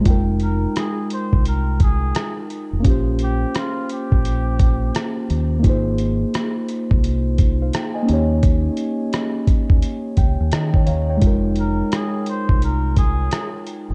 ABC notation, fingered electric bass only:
X:1
M:4/4
L:1/16
Q:"Swing 16ths" 1/4=86
K:Fm
V:1 name="Fingered electric bass" clef=bass
F,,,4 z3 C,,4- C,, z3 F,,, | B,,,4 z3 B,,,4- B,,, z2 E,,2 | A,,,4 z3 C,,4- C,, z2 E,,2- | E,,2 z4 z E,, z2 D,, E,, E,2 E,,2 |
F,,,4 z3 C,,4- C,, z3 F,,, |]